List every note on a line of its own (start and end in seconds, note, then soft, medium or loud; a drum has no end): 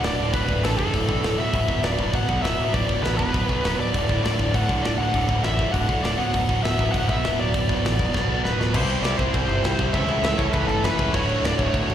0.03 0.16 D1 medium
0.03 0.20 D2 loud
0.03 0.19 A2 medium
0.03 0.19 D3 loud
0.03 0.34 D5 loud
0.03 snare loud
0.03 open hi-hat medium
0.18 0.31 D1 medium
0.18 0.34 D2 medium
0.18 0.34 A2 medium
0.18 0.35 D3 medium
0.33 0.46 D1 medium
0.33 0.49 D2 medium
0.33 0.48 A2 loud
0.33 0.49 D3 loud
0.33 0.64 B4 loud
0.33 kick loud
0.33 open hi-hat medium
0.48 0.61 D1 medium
0.48 0.64 D2 medium
0.48 0.63 A2 medium
0.48 0.64 D3 loud
0.48 kick medium
0.62 0.76 A1 medium
0.62 0.79 D2 medium
0.62 0.79 A2 medium
0.62 0.79 D3 medium
0.62 0.77 A4 medium
0.62 snare loud
0.62 open hi-hat medium
0.78 0.92 F#1 medium
0.78 0.94 D2 medium
0.78 0.93 A2 medium
0.78 0.95 D3 loud
0.78 1.40 A4 medium
0.78 kick medium
0.94 1.07 D1 medium
0.94 1.09 D2 medium
0.94 1.08 A2 medium
0.94 1.08 D3 medium
0.94 kick medium
0.94 open hi-hat medium
1.08 1.22 B1 medium
1.08 1.23 D2 medium
1.08 1.22 A2 medium
1.08 1.23 D3 medium
1.08 kick medium
1.23 1.36 D1 medium
1.23 1.38 D2 loud
1.23 1.37 A2 loud
1.23 1.39 D3 loud
1.23 snare loud
1.23 open hi-hat medium
1.37 1.51 D1 medium
1.37 1.53 B2 medium
1.37 1.53 F#3 medium
1.37 1.53 B3 loud
1.37 1.85 E5 loud
1.53 1.66 D1 medium
1.53 1.67 B2 medium
1.53 1.68 F#3 loud
1.53 1.69 B3 loud
1.53 kick loud
1.53 open hi-hat medium
1.68 1.81 D1 medium
1.68 1.83 B2 medium
1.68 1.84 F#3 medium
1.68 1.83 B3 medium
1.68 kick medium
1.82 1.96 D1 medium
1.82 1.98 B2 medium
1.82 1.99 F#3 medium
1.82 1.99 B3 medium
1.82 2.14 D5 medium
1.82 snare loud
1.82 open hi-hat medium
1.98 2.11 D1 medium
1.98 2.13 B2 medium
1.98 2.14 F#3 loud
1.98 2.12 B3 loud
1.98 kick medium
2.13 2.26 D1 medium
2.13 2.27 B2 medium
2.13 2.28 F#3 medium
2.13 2.28 B3 medium
2.13 2.42 F#5 loud
2.13 kick medium
2.13 open hi-hat medium
2.29 2.42 B1 medium
2.29 2.42 B2 medium
2.29 2.43 F#3 medium
2.29 2.41 B3 loud
2.29 kick medium
2.42 2.56 D1 loud
2.42 2.56 B2 medium
2.42 2.58 F#3 medium
2.42 2.57 B3 loud
2.42 2.74 E5 loud
2.42 snare loud
2.42 open hi-hat medium
2.57 2.71 D1 medium
2.57 2.73 B2 medium
2.57 2.73 F#3 medium
2.57 2.72 B3 medium
2.73 2.87 D1 loud
2.73 2.86 B2 medium
2.73 2.88 F#3 medium
2.73 2.87 B3 loud
2.73 3.03 D5 loud
2.73 kick loud
2.73 open hi-hat medium
2.87 3.02 D1 medium
2.87 3.03 B2 medium
2.87 3.03 F#3 medium
2.87 3.02 B3 medium
2.87 kick medium
3.03 3.16 A1 medium
3.03 3.17 B2 medium
3.03 3.18 F#3 medium
3.03 3.18 B3 medium
3.03 3.16 B4 medium
3.03 snare loud
3.03 open hi-hat medium
3.18 3.32 E1 medium
3.18 3.33 B2 medium
3.18 3.33 F#3 loud
3.18 3.32 B3 loud
3.18 3.74 B4 loud
3.18 kick medium
3.33 3.47 D1 medium
3.33 3.48 B2 medium
3.33 3.49 F#3 medium
3.33 3.49 B3 loud
3.33 kick loud
3.33 open hi-hat medium
3.49 3.62 B1 medium
3.49 3.64 B2 medium
3.49 3.65 F#3 medium
3.49 3.63 B3 medium
3.49 kick medium
3.63 3.76 D1 medium
3.63 3.78 B2 medium
3.63 3.79 F#3 loud
3.63 3.79 B3 loud
3.63 snare loud
3.63 open hi-hat medium
3.77 3.91 D1 medium
3.77 3.93 B2 medium
3.77 3.95 F#3 medium
3.77 3.93 B3 medium
3.77 4.23 D5 medium
3.94 4.07 D1 medium
3.94 4.10 D2 medium
3.94 4.09 A2 medium
3.94 4.09 D3 loud
3.94 kick loud
3.94 open hi-hat medium
4.09 4.22 D1 medium
4.09 4.24 D2 medium
4.09 4.25 A2 medium
4.09 4.25 D3 medium
4.09 kick medium
4.24 4.37 D1 medium
4.24 4.40 D2 medium
4.24 4.39 A2 medium
4.24 4.39 D3 medium
4.24 4.55 D5 medium
4.24 snare loud
4.24 open hi-hat medium
4.39 4.52 D1 medium
4.39 4.54 D2 medium
4.39 4.53 A2 medium
4.39 4.55 D3 loud
4.39 kick medium
4.54 4.67 D1 medium
4.54 4.70 D2 medium
4.54 4.68 A2 medium
4.54 4.69 D3 loud
4.54 4.85 F#5 medium
4.54 kick medium
4.54 open hi-hat medium
4.69 4.82 B1 medium
4.69 4.85 D2 medium
4.69 4.84 A2 medium
4.69 4.85 D3 medium
4.69 kick medium
4.83 4.97 D1 medium
4.83 4.99 D2 loud
4.83 4.98 A2 loud
4.83 4.98 D3 loud
4.83 4.97 D5 loud
4.83 snare loud
4.83 open hi-hat medium
4.98 5.12 D1 medium
4.98 5.13 D2 medium
4.98 5.13 A2 medium
4.98 5.14 D3 medium
4.98 5.44 F#5 loud
5.14 5.27 D1 loud
5.14 5.29 D2 loud
5.14 5.28 A2 loud
5.14 5.28 D3 loud
5.14 kick loud
5.14 open hi-hat medium
5.28 5.42 D1 medium
5.28 5.44 D2 medium
5.28 5.43 A2 medium
5.28 5.44 D3 medium
5.28 kick medium
5.43 5.56 A1 medium
5.43 5.58 D2 medium
5.43 5.57 A2 medium
5.43 5.57 D3 medium
5.43 5.72 E5 loud
5.43 snare loud
5.43 open hi-hat medium
5.58 5.72 F#1 medium
5.58 5.73 D2 medium
5.58 5.72 A2 loud
5.58 5.73 D3 loud
5.58 kick medium
5.73 5.87 D1 medium
5.73 5.89 D2 medium
5.73 5.88 A2 medium
5.73 5.88 D3 medium
5.73 6.04 F#5 medium
5.73 kick medium
5.73 open hi-hat medium
5.88 6.02 B1 medium
5.88 6.02 D2 medium
5.88 6.01 A2 medium
5.88 6.03 D3 medium
5.88 kick medium
6.03 6.17 D1 medium
6.03 6.18 D2 medium
6.03 6.17 A2 loud
6.03 6.19 D3 loud
6.03 6.19 D5 loud
6.03 snare loud
6.03 open hi-hat medium
6.18 6.32 D1 medium
6.18 6.34 B2 loud
6.18 6.34 F#3 loud
6.18 6.34 B3 loud
6.18 6.60 F#5 loud
6.34 6.47 D1 loud
6.34 6.48 B2 medium
6.34 6.49 F#3 medium
6.34 6.50 B3 loud
6.34 kick loud
6.34 open hi-hat medium
6.49 6.62 D1 medium
6.49 6.64 B2 medium
6.49 6.64 F#3 medium
6.49 6.64 B3 medium
6.49 kick medium
6.63 6.77 D1 medium
6.63 6.79 B2 medium
6.63 6.79 F#3 medium
6.63 6.79 B3 medium
6.63 6.91 E5 medium
6.63 snare loud
6.63 open hi-hat medium
6.79 6.92 D1 medium
6.79 6.95 B2 medium
6.79 6.95 F#3 loud
6.79 6.94 B3 loud
6.79 kick medium
6.92 7.07 D1 medium
6.92 7.09 B3 medium
6.92 7.08 F#5 loud
6.92 kick loud
6.92 open hi-hat medium
6.96 7.08 B2 medium
6.96 7.09 F#3 medium
7.09 7.22 B1 medium
7.09 7.24 B2 medium
7.09 7.25 F#3 medium
7.09 7.24 B3 loud
7.09 7.37 E5 loud
7.09 kick medium
7.24 7.37 D1 medium
7.24 7.38 B2 medium
7.24 7.38 F#3 loud
7.24 7.39 B3 loud
7.24 snare loud
7.24 open hi-hat medium
7.39 7.52 D1 medium
7.39 7.53 B2 medium
7.39 7.53 F#3 medium
7.39 7.53 B3 medium
7.39 8.40 D5 medium
7.54 7.67 D1 medium
7.54 7.68 B2 medium
7.54 7.68 F#3 medium
7.54 7.68 B3 loud
7.54 kick loud
7.54 open hi-hat medium
7.69 7.82 D1 medium
7.69 7.84 B2 medium
7.69 7.84 F#3 medium
7.69 7.83 B3 medium
7.69 kick medium
7.83 7.97 A1 medium
7.83 7.98 B2 medium
7.83 7.98 F#3 medium
7.83 7.99 B3 medium
7.83 snare loud
7.83 open hi-hat medium
7.99 8.12 E1 medium
7.99 8.13 B2 loud
7.99 8.14 F#3 loud
7.99 8.13 B3 loud
7.99 kick medium
8.14 8.27 D1 medium
8.14 8.28 B2 medium
8.14 8.29 F#3 medium
8.14 8.29 B3 medium
8.14 kick medium
8.14 snare medium
8.28 8.42 B1 medium
8.28 8.44 B2 medium
8.28 8.43 F#3 medium
8.28 8.43 B3 medium
8.43 8.57 D1 medium
8.43 8.58 B2 medium
8.43 8.58 F#3 loud
8.43 8.58 B3 loud
8.43 8.75 B4 medium
8.43 snare medium
8.59 8.72 D1 medium
8.59 8.73 B2 medium
8.59 8.73 F#3 medium
8.59 8.74 B3 medium
8.59 snare medium
8.74 8.94 C2 loud
8.74 9.18 C3 loud
8.74 9.18 G3 loud
8.74 9.18 C4 medium
8.74 9.18 E4 loud
8.74 9.18 G4 loud
8.74 9.03 C5 loud
8.74 9.17 C5 loud
8.74 kick loud
8.74 crash loud
8.74 crash medium
8.90 crash medium
9.02 9.13 C2 medium
9.02 9.17 D5 medium
9.02 snare loud
9.02 crash medium
9.17 9.29 C2 medium
9.17 9.92 C3 medium
9.17 9.93 G3 medium
9.17 9.93 C4 medium
9.17 9.93 E4 medium
9.17 9.93 G4 medium
9.17 9.95 C5 loud
9.17 9.93 C5 medium
9.17 kick medium
9.17 crash medium
9.34 9.44 C2 medium
9.34 kick loud
9.34 crash medium
9.48 9.58 G1 medium
9.48 crash medium
9.62 9.73 C2 medium
9.62 snare loud
9.62 crash medium
9.78 9.89 C2 medium
9.78 9.93 C3 medium
9.78 9.93 G3 medium
9.78 9.93 C4 medium
9.78 9.93 E4 medium
9.78 9.93 G4 medium
9.78 9.93 C5 medium
9.78 kick medium
9.78 crash medium
9.92 10.04 C#2 loud
9.92 10.37 A2 medium
9.92 10.37 E3 loud
9.92 10.38 A3 loud
9.92 10.38 C#4 loud
9.92 10.37 E4 loud
9.92 10.37 A4 loud
9.92 10.21 E5 loud
9.92 kick loud
9.92 crash medium
10.08 10.18 C#2 loud
10.08 crash medium
10.22 10.33 C#2 loud
10.22 10.40 E5 loud
10.22 snare loud
10.22 crash medium
10.38 10.49 C#2 medium
10.38 11.13 A2 medium
10.38 11.13 E3 medium
10.38 11.13 A3 medium
10.38 11.13 C#4 medium
10.38 11.12 E4 medium
10.38 11.12 A4 loud
10.38 10.43 C#5 loud
10.38 kick medium
10.38 crash medium
10.53 10.64 C#2 medium
10.53 10.69 B4 medium
10.53 kick loud
10.53 crash medium
10.67 10.78 G1 loud
10.67 10.83 A4 medium
10.67 crash medium
10.82 10.93 F#1 loud
10.82 11.14 B4 medium
10.82 snare loud
10.82 crash medium
10.98 11.09 C#2 medium
10.98 11.13 A2 medium
10.98 11.13 E3 medium
10.98 11.13 A3 medium
10.98 11.13 C#4 medium
10.98 11.13 E4 medium
10.98 11.12 A4 loud
10.98 kick medium
10.98 crash medium
11.14 11.34 D1 loud
11.14 11.57 D2 medium
11.14 11.58 A2 loud
11.14 11.58 D3 loud
11.14 11.57 A3 loud
11.14 11.56 F#4 loud
11.14 11.45 C#5 loud
11.14 kick loud
11.14 crash medium
11.29 crash medium
11.42 11.52 D1 medium
11.42 11.58 D5 loud
11.42 snare loud
11.42 crash medium
11.58 11.68 D1 medium
11.58 11.95 D2 medium
11.58 11.95 A2 medium
11.58 11.95 D3 medium
11.58 11.95 A3 medium
11.58 11.95 F#4 medium
11.58 11.95 C#5 loud
11.58 kick medium
11.58 crash medium
11.73 11.83 D1 loud
11.73 kick medium
11.73 crash medium
11.88 11.95 A1 medium
11.88 crash medium